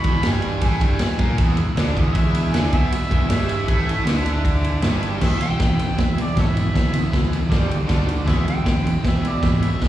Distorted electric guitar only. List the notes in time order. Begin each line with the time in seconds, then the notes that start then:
0.04 E2 E3
0.23 G2 G3
0.61 A2 A3
0.80 G2 G3
1.00 muted distorted electric guitar stroke
1.18 A#2 A#3
1.38 E2 E3
1.57 E2
1.76 D3 D4
1.94 E2 E3
2.13 E2 E3
2.53 D3 D4
2.71 B2 B3
2.90 muted distorted electric guitar stroke
3.10 E2 E3
3.27 G2 G3
3.67 A2 A3
4.05 D3 D4
4.81 G2 G3
5.19 E2 B2 E3
5.40 E2 B2
5.58 E2 B2
5.78 E2 B2
5.97 E2 B2
6.17 E2 B2
6.35 E2 B2
6.55 E2 B2
6.73 E2 B2
6.93 E2 B2
7.12 E2 B2
7.31 E2 B2
7.49 G2 D3 G3
7.68 G2 D3
7.87 D3 A3 D4
8.07 D3 A3
8.25 E2 B2 E3
8.45 E2 B2
8.64 E2 B2
8.84 E2 B2
9.03 E2 B2
9.22 E2 B2
9.42 E2 B2
9.61 E2 B2
9.80 E2 B2